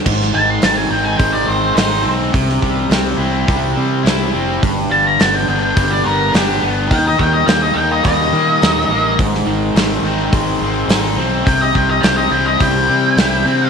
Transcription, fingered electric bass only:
0.07 0.33 G#1 medium
0.35 0.61 G#1 medium
0.63 0.89 G#1 medium
0.90 1.17 G#1 medium
1.20 1.46 G#1 medium
1.48 1.75 G#1 medium
1.76 2.03 G#1 medium
2.05 2.31 B1 medium
2.34 2.61 C2 medium
2.62 2.89 C2 medium
2.90 3.17 C2 medium
3.18 3.45 C2 medium
3.49 3.75 C2 medium
3.77 4.03 C3 medium
4.04 4.31 C2 medium
4.34 4.60 F1 medium
4.63 4.89 G1 loud
4.90 5.17 G1 medium
5.20 5.46 G1 medium
5.49 5.75 G1 medium
5.77 6.03 G1 medium
6.06 6.32 G1 medium
6.34 6.60 G1 medium
6.63 6.89 G1 medium
6.91 7.17 D#2 medium
7.19 7.46 D#2 medium
7.48 7.74 D#2 medium
7.75 8.02 D#2 medium
8.05 8.31 D#2 medium
8.33 8.59 D#3 medium
8.62 8.88 D#2 medium
8.89 9.16 A1 medium
9.19 9.45 G#1 medium
9.45 9.73 G#1 medium
9.74 10.01 G#1 medium
10.02 10.30 G#1 medium
10.33 10.59 G#1 medium
10.60 10.87 G#1 medium
10.88 11.15 G#1 loud
11.16 11.44 B1 medium
11.47 11.73 C2 loud
11.76 12.02 C2 medium
12.04 12.30 C2 medium
12.31 12.58 C2 medium
12.60 12.87 C2 medium
12.89 13.16 C3 medium
13.17 13.44 C2 medium
13.45 13.70 C3 medium

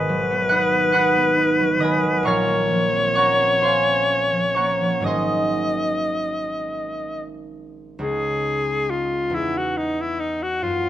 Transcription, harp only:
0.00 2.28 G#1 medium
0.00 2.29 G#2 medium
0.00 1.78 D#3 soft
0.00 0.30 B3 medium
0.00 0.50 D#4 soft
0.00 1.80 D#5 medium
0.00 0.49 F#5 medium
0.00 1.80 G#5 medium
0.00 0.49 B5 medium
0.00 0.50 D#6 loud
0.00 1.92 G#6 loud
0.00 1.08 B6 loud
0.09 1.59 F#3 medium
0.31 0.71 B3 soft
0.49 0.93 D#4 soft
0.49 0.92 F#5 medium
0.49 0.93 B5 medium
0.49 0.92 D#6 medium
0.49 0.91 F#6 medium
0.72 1.14 B3 soft
0.92 1.36 D#4 medium
0.92 2.29 F#5 medium
0.92 1.80 B5 medium
0.92 1.79 D#6 medium
0.92 2.28 F#6 loud
1.16 2.29 B3 medium
1.37 2.29 D#4 soft
1.60 2.02 F#3 soft
1.78 2.29 D#3 soft
1.78 2.29 D#5 medium
1.78 2.29 D#6 medium
1.83 3.63 G#5 medium
1.83 2.29 B5 medium
2.03 2.29 F#3 soft
2.23 5.09 A#1 medium
2.23 5.09 A#2 medium
2.23 3.63 F5 medium
2.23 3.15 A#5 medium
2.23 3.14 C#6 medium
2.23 5.08 F6 loud
2.48 4.56 A#3 soft
2.71 4.31 F3 soft
2.94 3.39 C4 soft
3.14 3.59 C#4 soft
3.14 4.54 C#5 medium
3.14 4.55 F#5 medium
3.14 4.53 C#6 medium
3.18 4.54 A#5 medium
3.40 3.85 C4 soft
3.60 4.07 C#4 soft
3.60 5.10 C5 medium
3.60 5.03 C6 medium
3.65 5.10 F5 medium
3.65 5.04 G#5 medium
3.87 5.10 C4 soft
4.09 5.02 C#4 soft
4.32 4.80 F3 soft
4.55 5.01 A#3 soft
4.55 8.45 C#5 medium
4.55 8.05 F#5 medium
4.55 8.46 A#5 medium
4.55 8.45 C#6 medium
4.81 5.09 F3 soft
5.00 8.05 G#1 soft
5.00 8.02 G#2 soft
5.00 8.03 F#3 soft
5.00 8.92 A#3 soft
5.00 8.93 C#4 soft
5.04 7.99 G#4 soft
5.04 8.95 D#5 medium
5.04 8.95 G#5 medium
5.04 8.05 C6 medium
5.04 8.94 D#6 medium
7.99 9.36 C#2 soft
7.99 9.32 D#4 soft
7.99 9.31 G#4 soft
9.30 10.66 E2 soft
9.30 10.66 D#4 soft
9.35 10.66 G#4 soft
10.62 10.89 F#2 soft

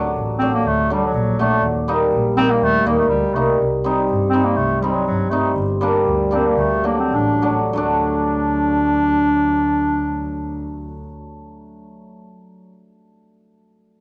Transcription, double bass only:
0.16 0.45 A1 medium
0.65 0.80 D2 medium
1.14 1.43 A#1 loud
1.62 1.77 D#2 medium
2.11 2.41 A#1 loud
2.62 2.77 D#2 medium
2.86 3.08 D#2 medium
3.10 3.32 D2 medium
3.34 3.57 C2 medium
3.59 3.74 C2 medium
4.08 4.38 G2 loud
4.57 4.72 C2 medium
5.06 5.35 G2 medium
5.55 5.70 G1 loud
6.05 6.36 D2 medium
6.57 6.73 D2 loud
7.13 7.50 A1 medium
7.73 11.11 D2 medium

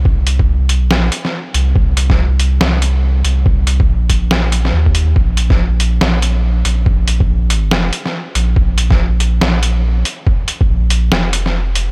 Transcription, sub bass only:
0.00 0.73 C2 medium
0.73 0.98 B1 medium
0.98 1.10 A#1 medium
1.54 1.74 C2 loud
1.75 2.59 C2 medium
2.61 3.23 C2 loud
3.24 3.87 C2 loud
3.88 4.72 A#1 loud
4.73 5.15 D#2 loud
5.16 6.00 A#1 medium
6.01 6.64 A#1 loud
6.65 7.91 A#1 medium
8.35 8.55 A#1 loud
8.56 9.40 A#1 medium
9.41 10.04 A#1 loud
10.69 11.10 A#1 loud
11.12 11.92 F1 loud

